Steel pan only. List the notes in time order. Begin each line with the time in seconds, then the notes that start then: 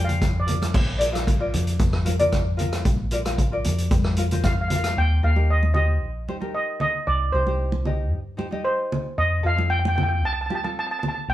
0.05 F5
0.40 D5
4.45 F5
4.53 F5
4.61 F5
4.68 F5
4.76 F5
4.84 F5
4.98 G5
5.24 F5
5.50 D#5
5.74 D#5
6.55 D#5
6.81 D#5
7.07 D5
7.32 C5
8.65 C5
9.18 D#5
9.46 F5
9.70 G5
9.79 G5
9.88 G5
9.96 G5
10.03 G5
10.09 G5
10.25 A5
10.33 A5
10.41 A5
10.46 A5
10.55 A5
10.64 A5
10.79 A5
10.87 A5
10.91 A5
10.99 A5
11.08 A5
11.15 A5
11.30 G5